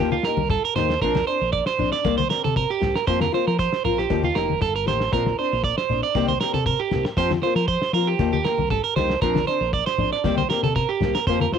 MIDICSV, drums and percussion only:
0, 0, Header, 1, 2, 480
1, 0, Start_track
1, 0, Key_signature, -2, "major"
1, 0, Tempo, 513259
1, 952, Time_signature, 4, 2, 24, 8
1, 10834, End_track
2, 0, Start_track
2, 0, Title_t, "Drums"
2, 110, Note_on_c, 9, 63, 87
2, 204, Note_off_c, 9, 63, 0
2, 221, Note_on_c, 9, 38, 78
2, 314, Note_off_c, 9, 38, 0
2, 348, Note_on_c, 9, 63, 85
2, 442, Note_off_c, 9, 63, 0
2, 466, Note_on_c, 9, 36, 92
2, 466, Note_on_c, 9, 38, 28
2, 466, Note_on_c, 9, 64, 83
2, 559, Note_off_c, 9, 64, 0
2, 560, Note_off_c, 9, 36, 0
2, 560, Note_off_c, 9, 38, 0
2, 708, Note_on_c, 9, 63, 73
2, 708, Note_on_c, 9, 64, 84
2, 711, Note_on_c, 9, 38, 71
2, 801, Note_off_c, 9, 63, 0
2, 801, Note_off_c, 9, 64, 0
2, 805, Note_off_c, 9, 38, 0
2, 841, Note_on_c, 9, 38, 70
2, 935, Note_off_c, 9, 38, 0
2, 950, Note_on_c, 9, 36, 93
2, 1044, Note_off_c, 9, 36, 0
2, 1075, Note_on_c, 9, 63, 81
2, 1082, Note_on_c, 9, 38, 84
2, 1168, Note_off_c, 9, 63, 0
2, 1175, Note_off_c, 9, 38, 0
2, 1429, Note_on_c, 9, 38, 29
2, 1431, Note_on_c, 9, 36, 107
2, 1523, Note_off_c, 9, 38, 0
2, 1525, Note_off_c, 9, 36, 0
2, 1553, Note_on_c, 9, 38, 69
2, 1647, Note_off_c, 9, 38, 0
2, 1672, Note_on_c, 9, 64, 74
2, 1765, Note_off_c, 9, 64, 0
2, 1801, Note_on_c, 9, 38, 29
2, 1895, Note_off_c, 9, 38, 0
2, 1913, Note_on_c, 9, 63, 64
2, 1914, Note_on_c, 9, 36, 95
2, 1919, Note_on_c, 9, 38, 72
2, 2007, Note_off_c, 9, 63, 0
2, 2008, Note_off_c, 9, 36, 0
2, 2012, Note_off_c, 9, 38, 0
2, 2050, Note_on_c, 9, 63, 75
2, 2144, Note_off_c, 9, 63, 0
2, 2156, Note_on_c, 9, 38, 73
2, 2249, Note_off_c, 9, 38, 0
2, 2291, Note_on_c, 9, 63, 72
2, 2385, Note_off_c, 9, 63, 0
2, 2394, Note_on_c, 9, 36, 93
2, 2400, Note_on_c, 9, 64, 69
2, 2488, Note_off_c, 9, 36, 0
2, 2493, Note_off_c, 9, 64, 0
2, 2631, Note_on_c, 9, 38, 75
2, 2636, Note_on_c, 9, 63, 64
2, 2636, Note_on_c, 9, 64, 66
2, 2725, Note_off_c, 9, 38, 0
2, 2729, Note_off_c, 9, 63, 0
2, 2729, Note_off_c, 9, 64, 0
2, 2761, Note_on_c, 9, 38, 69
2, 2854, Note_off_c, 9, 38, 0
2, 2873, Note_on_c, 9, 36, 102
2, 2966, Note_off_c, 9, 36, 0
2, 2995, Note_on_c, 9, 38, 80
2, 3007, Note_on_c, 9, 63, 65
2, 3088, Note_off_c, 9, 38, 0
2, 3100, Note_off_c, 9, 63, 0
2, 3118, Note_on_c, 9, 38, 31
2, 3211, Note_off_c, 9, 38, 0
2, 3355, Note_on_c, 9, 38, 31
2, 3356, Note_on_c, 9, 36, 102
2, 3448, Note_off_c, 9, 38, 0
2, 3449, Note_off_c, 9, 36, 0
2, 3483, Note_on_c, 9, 38, 65
2, 3576, Note_off_c, 9, 38, 0
2, 3596, Note_on_c, 9, 64, 68
2, 3690, Note_off_c, 9, 64, 0
2, 3725, Note_on_c, 9, 38, 28
2, 3818, Note_off_c, 9, 38, 0
2, 3835, Note_on_c, 9, 38, 73
2, 3836, Note_on_c, 9, 36, 90
2, 3840, Note_on_c, 9, 63, 61
2, 3928, Note_off_c, 9, 38, 0
2, 3930, Note_off_c, 9, 36, 0
2, 3934, Note_off_c, 9, 63, 0
2, 3960, Note_on_c, 9, 63, 68
2, 4054, Note_off_c, 9, 63, 0
2, 4074, Note_on_c, 9, 38, 77
2, 4168, Note_off_c, 9, 38, 0
2, 4206, Note_on_c, 9, 63, 66
2, 4300, Note_off_c, 9, 63, 0
2, 4314, Note_on_c, 9, 38, 30
2, 4315, Note_on_c, 9, 36, 100
2, 4316, Note_on_c, 9, 64, 69
2, 4408, Note_off_c, 9, 38, 0
2, 4409, Note_off_c, 9, 36, 0
2, 4409, Note_off_c, 9, 64, 0
2, 4556, Note_on_c, 9, 63, 62
2, 4558, Note_on_c, 9, 38, 71
2, 4649, Note_off_c, 9, 63, 0
2, 4651, Note_off_c, 9, 38, 0
2, 4679, Note_on_c, 9, 38, 70
2, 4773, Note_off_c, 9, 38, 0
2, 4796, Note_on_c, 9, 36, 99
2, 4889, Note_off_c, 9, 36, 0
2, 4923, Note_on_c, 9, 63, 65
2, 4924, Note_on_c, 9, 38, 78
2, 5017, Note_off_c, 9, 63, 0
2, 5018, Note_off_c, 9, 38, 0
2, 5266, Note_on_c, 9, 38, 28
2, 5271, Note_on_c, 9, 36, 103
2, 5360, Note_off_c, 9, 38, 0
2, 5365, Note_off_c, 9, 36, 0
2, 5402, Note_on_c, 9, 38, 70
2, 5495, Note_off_c, 9, 38, 0
2, 5512, Note_on_c, 9, 64, 72
2, 5606, Note_off_c, 9, 64, 0
2, 5752, Note_on_c, 9, 36, 85
2, 5752, Note_on_c, 9, 63, 64
2, 5757, Note_on_c, 9, 38, 70
2, 5846, Note_off_c, 9, 36, 0
2, 5846, Note_off_c, 9, 63, 0
2, 5850, Note_off_c, 9, 38, 0
2, 5874, Note_on_c, 9, 63, 82
2, 5967, Note_off_c, 9, 63, 0
2, 5992, Note_on_c, 9, 38, 77
2, 6086, Note_off_c, 9, 38, 0
2, 6115, Note_on_c, 9, 63, 73
2, 6209, Note_off_c, 9, 63, 0
2, 6227, Note_on_c, 9, 64, 79
2, 6230, Note_on_c, 9, 36, 96
2, 6320, Note_off_c, 9, 64, 0
2, 6324, Note_off_c, 9, 36, 0
2, 6467, Note_on_c, 9, 63, 78
2, 6467, Note_on_c, 9, 64, 90
2, 6468, Note_on_c, 9, 38, 77
2, 6561, Note_off_c, 9, 38, 0
2, 6561, Note_off_c, 9, 63, 0
2, 6561, Note_off_c, 9, 64, 0
2, 6594, Note_on_c, 9, 38, 72
2, 6687, Note_off_c, 9, 38, 0
2, 6706, Note_on_c, 9, 36, 99
2, 6706, Note_on_c, 9, 38, 31
2, 6799, Note_off_c, 9, 36, 0
2, 6800, Note_off_c, 9, 38, 0
2, 6833, Note_on_c, 9, 38, 77
2, 6835, Note_on_c, 9, 63, 80
2, 6926, Note_off_c, 9, 38, 0
2, 6929, Note_off_c, 9, 63, 0
2, 6942, Note_on_c, 9, 38, 28
2, 7035, Note_off_c, 9, 38, 0
2, 7183, Note_on_c, 9, 36, 106
2, 7184, Note_on_c, 9, 38, 28
2, 7277, Note_off_c, 9, 36, 0
2, 7278, Note_off_c, 9, 38, 0
2, 7312, Note_on_c, 9, 38, 73
2, 7405, Note_off_c, 9, 38, 0
2, 7662, Note_on_c, 9, 36, 87
2, 7663, Note_on_c, 9, 38, 74
2, 7663, Note_on_c, 9, 63, 75
2, 7756, Note_off_c, 9, 36, 0
2, 7756, Note_off_c, 9, 63, 0
2, 7757, Note_off_c, 9, 38, 0
2, 7794, Note_on_c, 9, 63, 87
2, 7888, Note_off_c, 9, 63, 0
2, 7906, Note_on_c, 9, 38, 80
2, 8000, Note_off_c, 9, 38, 0
2, 8026, Note_on_c, 9, 63, 83
2, 8120, Note_off_c, 9, 63, 0
2, 8140, Note_on_c, 9, 36, 99
2, 8145, Note_on_c, 9, 64, 90
2, 8234, Note_off_c, 9, 36, 0
2, 8239, Note_off_c, 9, 64, 0
2, 8382, Note_on_c, 9, 38, 71
2, 8386, Note_on_c, 9, 63, 85
2, 8475, Note_off_c, 9, 38, 0
2, 8480, Note_off_c, 9, 63, 0
2, 8508, Note_on_c, 9, 38, 70
2, 8602, Note_off_c, 9, 38, 0
2, 8620, Note_on_c, 9, 36, 101
2, 8621, Note_on_c, 9, 38, 28
2, 8714, Note_off_c, 9, 36, 0
2, 8715, Note_off_c, 9, 38, 0
2, 8745, Note_on_c, 9, 63, 84
2, 8751, Note_on_c, 9, 38, 82
2, 8838, Note_off_c, 9, 63, 0
2, 8844, Note_off_c, 9, 38, 0
2, 8863, Note_on_c, 9, 38, 28
2, 8956, Note_off_c, 9, 38, 0
2, 9100, Note_on_c, 9, 36, 108
2, 9194, Note_off_c, 9, 36, 0
2, 9229, Note_on_c, 9, 38, 64
2, 9323, Note_off_c, 9, 38, 0
2, 9336, Note_on_c, 9, 64, 85
2, 9430, Note_off_c, 9, 64, 0
2, 9467, Note_on_c, 9, 38, 26
2, 9560, Note_off_c, 9, 38, 0
2, 9576, Note_on_c, 9, 63, 75
2, 9577, Note_on_c, 9, 38, 73
2, 9579, Note_on_c, 9, 36, 93
2, 9669, Note_off_c, 9, 63, 0
2, 9670, Note_off_c, 9, 38, 0
2, 9672, Note_off_c, 9, 36, 0
2, 9702, Note_on_c, 9, 63, 83
2, 9796, Note_off_c, 9, 63, 0
2, 9823, Note_on_c, 9, 38, 80
2, 9917, Note_off_c, 9, 38, 0
2, 9949, Note_on_c, 9, 63, 81
2, 10043, Note_off_c, 9, 63, 0
2, 10056, Note_on_c, 9, 64, 76
2, 10059, Note_on_c, 9, 36, 98
2, 10062, Note_on_c, 9, 38, 30
2, 10150, Note_off_c, 9, 64, 0
2, 10152, Note_off_c, 9, 36, 0
2, 10156, Note_off_c, 9, 38, 0
2, 10291, Note_on_c, 9, 63, 70
2, 10291, Note_on_c, 9, 64, 76
2, 10303, Note_on_c, 9, 38, 76
2, 10385, Note_off_c, 9, 63, 0
2, 10385, Note_off_c, 9, 64, 0
2, 10396, Note_off_c, 9, 38, 0
2, 10426, Note_on_c, 9, 38, 73
2, 10519, Note_off_c, 9, 38, 0
2, 10537, Note_on_c, 9, 36, 102
2, 10538, Note_on_c, 9, 48, 58
2, 10631, Note_off_c, 9, 36, 0
2, 10632, Note_off_c, 9, 48, 0
2, 10663, Note_on_c, 9, 63, 71
2, 10665, Note_on_c, 9, 48, 51
2, 10756, Note_off_c, 9, 63, 0
2, 10758, Note_off_c, 9, 48, 0
2, 10777, Note_on_c, 9, 38, 67
2, 10779, Note_on_c, 9, 64, 67
2, 10834, Note_off_c, 9, 38, 0
2, 10834, Note_off_c, 9, 64, 0
2, 10834, End_track
0, 0, End_of_file